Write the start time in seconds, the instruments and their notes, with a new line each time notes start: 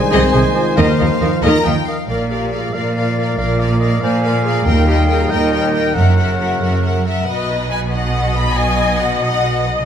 Already playing: trombone section D#3 G#3, french horn section D4, trumpet C5, violin section G#5
0.10 double bass section C2, cello section C3, french horn section C4, viola section G#4, clarinet C5, oboe D#5, violin section D#5, flute G#5
0.32 double bass section C2, cello section C3, viola section G#4, clarinet C5, oboe D#5, violin section D#5, flute G#5
0.44 french horn section A#3
0.54 french horn section F4, clarinet C5, oboe D#5, flute G#5
0.76 double bass section D#2, timpani D#3, cello section D#3, trombone section F3, french horn section D#4, clarinet A#4, viola section A#4, oboe D#5, violin section D#5 F5, flute F5
0.98 double bass section D#2, cello section D#3, clarinet A#4, viola section A#4, oboe D#5, violin section D#5, flute F5
1.20 double bass section D#2, cello section D#3, violin section A#4, clarinet A#4, viola section A#4, oboe D#5, flute F5
1.42 double bass section D#2, cello section D#3, clarinet A#4, trumpet A#4, viola section A#4, violin section D#5 A#5, oboe D#5, flute F5
1.64 double bass section D#2, cello section D#3, clarinet A#4, viola section A#4, oboe D#5, violin section D#5 G5, flute F5
1.87 clarinet A#4, oboe D#5, violin section F5, flute F5
2.08 double bass section A#1, cello section A#2, trombone section A#2 F3, french horn section A#3 F4, viola section A#4, clarinet A#4, violin section D5 F5, oboe D5, trumpet D5, flute F5
2.30 clarinet G4, viola section A#4, violin section D5 F5
2.51 clarinet G#4, viola section A#4, violin section D5 F5
2.73 cello section A#2, viola section A#4, clarinet A#4, violin section D5 F5, flute D5, oboe F5
2.96 viola section A#4, violin section D5 F5
3.18 viola section A#4, violin section D5 F5
3.37 double bass section A#1, cello section A#2, viola section A#4, violin section D5 F5, oboe F5, flute F5
3.59 viola section A#4, oboe D5, violin section D5 F5
3.80 viola section A#4, violin section D5 F5, oboe D#5
4.01 cello section A#2, viola section A#4, clarinet C5, violin section D5 F5, oboe F5, flute G#5
4.23 viola section A#4, clarinet A#4, violin section D5 F5
4.44 clarinet G#4, viola section A#4, violin section D5 F5
4.65 double bass section D#2, cello section D#2, trombone section A#2 G3, french horn section A#3 D#4, viola section A#4, clarinet A#4, trumpet D#5, violin section D#5 G5, flute G5
4.88 clarinet G4, viola section A#4, violin section D#5 G5
5.07 clarinet G#4, viola section A#4, violin section D#5 G5
5.29 cello section D#2, viola section A#4, clarinet A#4, violin section D#5 G5, flute D#5, oboe G5
5.52 viola section A#4, violin section D#5 G5
5.73 viola section A#4, violin section D#5 G5
5.94 double bass section F#1, cello section F#2, trombone section C#3 F#3, french horn section E4, clarinet A#4, viola section A#4, trumpet C#5, violin section E5 F#5, oboe F#5, flute F#5
6.18 viola section A#4, violin section E5 F#5
6.38 viola section A#4, violin section E5 F#5
6.61 cello section F#2, viola section A#4, violin section E5 F#5
6.83 viola section A#4, violin section E5 F#5
7.06 viola section A#4, violin section E5 F#5
7.26 double bass section B1, cello section B2, violin section F#4 B4 D#5, viola section B4
7.49 violin section D#4 D#5
7.70 violin section F#4 B4 G#5
7.91 violin section D#4 D#5 F#5, viola section D#5
8.15 violin section F#4 B4
8.35 violin section D#4 D#5 B5
8.56 violin section F#4 B4 G#5
8.80 violin section D#4 D#5
9.00 violin section F#4 B4 F#5
9.22 violin section D#4 D#5 F#5
9.43 violin section F#4 B4
9.65 violin section D#4 D#5